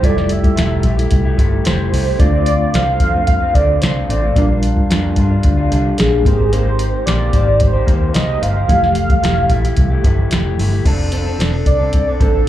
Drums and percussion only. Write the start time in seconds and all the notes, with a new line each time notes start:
0.03 kick, closed hi-hat
0.18 snare
0.29 closed hi-hat
0.44 kick, closed hi-hat
0.57 snare, closed hi-hat
0.83 kick, closed hi-hat
0.99 closed hi-hat
1.11 kick, closed hi-hat
1.38 kick, closed hi-hat
1.65 snare, closed hi-hat
1.94 open hi-hat
2.19 kick, closed hi-hat
2.46 closed hi-hat
2.74 snare, closed hi-hat
3.00 kick, closed hi-hat
3.27 kick, closed hi-hat
3.55 kick, closed hi-hat
3.82 snare, closed hi-hat
4.10 closed hi-hat
4.36 kick, closed hi-hat
4.63 closed hi-hat
4.77 kick
4.91 snare, closed hi-hat
5.16 kick, closed hi-hat
5.43 kick, closed hi-hat
5.72 closed hi-hat
5.98 snare, closed hi-hat
6.25 kick, closed hi-hat
6.53 closed hi-hat
6.79 closed hi-hat
7.07 snare, closed hi-hat
7.33 kick, closed hi-hat
7.60 kick, closed hi-hat
7.88 kick, closed hi-hat
8.14 snare, closed hi-hat
8.43 closed hi-hat
8.69 kick, closed hi-hat
8.84 snare
8.95 closed hi-hat
9.10 kick, closed hi-hat
9.24 snare, closed hi-hat
9.50 kick, closed hi-hat
9.65 closed hi-hat
9.77 kick, closed hi-hat
10.04 kick, closed hi-hat
10.31 snare, closed hi-hat
10.59 open hi-hat
10.85 kick, closed hi-hat, crash
11.12 closed hi-hat
11.40 snare, closed hi-hat
11.66 kick, closed hi-hat
11.93 kick, closed hi-hat
12.20 kick, closed hi-hat